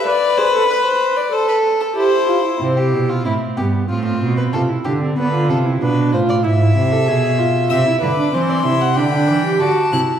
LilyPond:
<<
  \new Staff \with { instrumentName = "Violin" } { \time 4/4 \key c \major \tempo 4 = 94 d''8 c''8 b'16 c''8 d''16 c''16 b'8 a'16 c''4 | r1 | r1 | \key c \lydian e'''8 d'''8 c'''4 b''4 d'''8 fis'''8 | }
  \new Staff \with { instrumentName = "Violin" } { \time 4/4 \key c \major b'2 a'4 e'4 | c'16 g'8 f'16 e'8 g'8 f'16 f'8 b'16 a'8 g'8 | b'8 a'8 b'8 c''16 d''16 e''2 | \key c \lydian e''8 b'8 c''16 d''16 e''16 fis''16 g''4 a''4 | }
  \new Staff \with { instrumentName = "Viola" } { \time 4/4 \key c \major b'8 gis'16 a'16 b'4 a'4 g'8 f'16 e'16 | e'4 c'8 b8 c'4 f'16 e'16 d'16 c'16 | b16 f'8 e'16 d'8 f'8 e'16 e'8 a'16 gis'8 f'8 | \key c \lydian c'16 e'8 d'16 c'8 e'8 d'16 d'8 g'16 fis'8 e'8 | }
  \new Staff \with { instrumentName = "Cello" } { \clef bass \time 4/4 \key c \major r1 | c8 b,8 a,8 g,8 a,8 b,8 c8 d8 | d8 c8 b,8 a,8 gis,8 c8 b,4 | \key c \lydian c8 d8 e8 c8 d8 e8 d8 c8 | }
>>